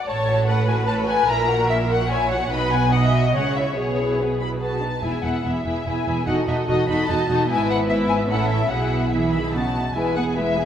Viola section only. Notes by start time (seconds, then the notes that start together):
0.07 C#5
0.48 B4
1.29 A#4
2.10 C#5
2.52 B4
2.93 D#5
3.35 C#5
3.77 G#4
5.03 B3 E4
5.23 B3 E4
5.43 B3 E4
5.65 B3 E4
5.86 B3 E4
6.06 B3 E4
6.26 D#4 F#4
6.47 D#4 F#4
6.67 D#4 F#4
6.88 D#4 F#4
7.08 D#4 F#4
7.29 D#4 F#4
7.48 B3 E4
7.89 B3 E4
8.30 C#4 E4
8.71 B3 E4
9.13 B3 E4
9.53 B3 D#4
9.95 G#3 E4
10.15 B3 G#4
10.37 G#3 E4
10.57 B3 G#4